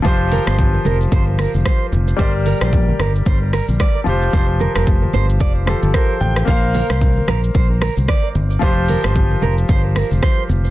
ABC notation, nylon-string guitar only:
X:1
M:4/4
L:1/16
Q:"Swing 16ths" 1/4=112
K:Fmix
V:1 name="Nylon-string guitar"
c z B c z2 B z c z B z c2 z2 | c z B c z2 B z c z B z d2 z2 | c z B B z2 c z d z c z B2 z2 | c z B c z2 B z c z B z d2 z2 |
c z B c z2 B z c z B z c2 z2 |]